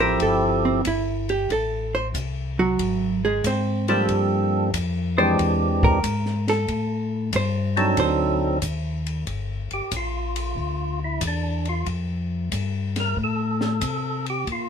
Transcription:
0.00 0.18 A1 medium
0.00 0.81 F3 medium
0.00 0.81 C4 medium
0.00 0.82 E4 medium
0.00 0.81 G4 medium
0.00 0.81 A4 medium
0.00 0.20 A#4 medium
0.20 0.83 G1 medium
0.20 0.64 A4 medium
0.20 kick soft
0.20 ride medium
0.65 0.85 C4 medium
0.85 1.48 G1 medium
0.85 1.29 E4 medium
0.85 kick soft
0.85 hi-hat pedal medium
0.85 ride medium
1.29 1.50 G4 medium
1.29 ride soft
1.49 2.13 A1 medium
1.49 1.94 A4 medium
1.49 kick soft
1.49 ride medium
1.95 2.07 C5 loud
2.14 2.78 C2 medium
2.14 kick soft
2.14 hi-hat pedal medium
2.14 ride medium
2.59 3.20 F#3 medium
2.59 3.20 F#4 medium
2.79 3.42 G#1 medium
2.79 kick soft
2.79 ride medium
3.25 3.45 G#3 medium
3.25 3.44 G#4 medium
3.44 4.07 G#2 medium
3.44 3.88 C4 medium
3.44 3.88 C5 medium
3.44 kick soft
3.44 hi-hat pedal medium
3.44 ride medium
3.88 4.70 F3 medium
3.88 4.70 G3 medium
3.88 4.70 A#3 medium
3.88 4.70 C4 medium
3.88 4.70 D4 medium
3.88 4.70 G4 medium
3.88 4.71 A4 medium
3.88 ride soft
4.09 4.72 G2 medium
4.09 kick soft
4.09 ride medium
4.74 5.37 F2 medium
4.74 kick soft
4.74 hi-hat pedal medium
4.74 ride medium
5.17 5.99 E3 medium
5.17 5.99 G#3 medium
5.17 6.00 C4 medium
5.17 6.00 D4 medium
5.17 6.00 G4 medium
5.17 5.79 C5 medium
5.38 6.02 E2 loud
5.38 kick soft
5.38 ride medium
5.83 6.45 A#4 medium
5.83 kick medium
6.03 6.66 G#2 medium
6.03 kick soft
6.03 hi-hat pedal medium
6.03 ride medium
6.26 snare soft
6.48 7.30 A4 medium
6.48 snare soft
6.48 ride medium
6.68 7.31 A2 medium
6.68 kick soft
6.68 ride medium
7.33 7.96 G2 loud
7.33 7.96 C5 medium
7.33 kick soft
7.33 hi-hat pedal medium
7.33 ride medium
7.77 8.59 F#3 medium
7.77 8.58 C4 medium
7.77 8.59 D4 medium
7.77 8.59 D#4 medium
7.77 8.59 A4 medium
7.77 ride soft
7.97 8.61 D2 loud
7.97 9.04 C5 medium
7.97 kick soft
7.97 ride medium
8.62 9.25 D#2 medium
8.62 kick soft
8.62 hi-hat pedal medium
8.62 ride medium
9.06 ride medium
9.27 9.68 G1 medium
9.27 kick soft
9.27 ride medium
9.71 9.82 G1 soft
9.71 9.93 G4 medium
9.71 ride soft
9.91 10.55 A#1 medium
9.91 kick soft
9.91 hi-hat pedal medium
9.91 ride medium
9.97 11.00 F4 medium
10.36 ride medium
10.56 11.20 D2 medium
10.56 kick soft
11.04 11.23 E4 medium
11.21 11.85 E2 medium
11.21 kick soft
11.21 hi-hat pedal medium
11.21 ride medium
11.27 11.68 D4 medium
11.65 11.88 F4 medium
11.65 ride soft
11.86 12.50 F2 medium
11.86 kick soft
11.86 ride medium
12.52 13.15 G2 medium
12.52 kick soft
12.52 hi-hat pedal medium
12.52 ride medium
12.96 13.18 A#4 loud
12.96 snare soft
12.96 ride medium
13.17 13.80 A2 medium
13.17 kick soft
13.24 14.26 A4 medium
13.61 snare medium
13.81 14.45 C3 medium
13.81 kick soft
13.81 hi-hat pedal medium
13.81 ride medium
14.26 14.48 G4 medium
14.26 ride soft
14.47 14.69 A#2 medium
14.47 kick soft
14.47 ride medium
14.52 14.69 F4 medium

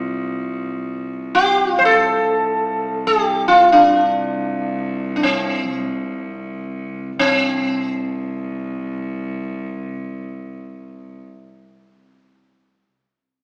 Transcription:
0.00 1.81 C2 medium
0.00 0.86 F4 medium
1.35 1.80 G4 medium
1.79 7.18 C2 medium
1.79 1.85 C5 medium
1.85 3.10 A4 medium
3.07 3.48 G4 medium
3.48 3.72 F4 medium
3.72 5.15 D4 medium
5.16 5.23 D4 soft
5.23 6.71 C4 medium
7.19 11.26 C2 medium
7.19 11.88 C4 medium

